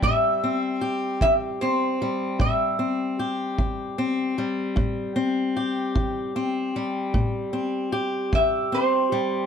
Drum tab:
BD |o--o--o--o--|o--o--o--o--|